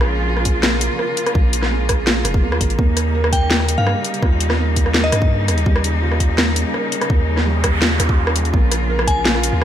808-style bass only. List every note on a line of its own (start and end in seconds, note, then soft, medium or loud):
0.00 0.89 A#1 loud
1.35 2.24 A#1 loud
2.25 2.44 F1 loud
2.43 2.59 D#2 loud
2.61 2.77 G#1 medium
2.79 3.77 D#2 loud
3.78 3.95 G2 medium
4.22 5.11 D#2 loud
5.12 5.50 G2 medium
5.48 5.65 D#2 loud
5.66 6.64 D#2 loud
7.10 7.99 D#2 loud
8.00 8.08 D#2 loud
8.09 8.53 D#2 medium
8.54 9.52 A#1 loud
9.53 9.64 D#2 medium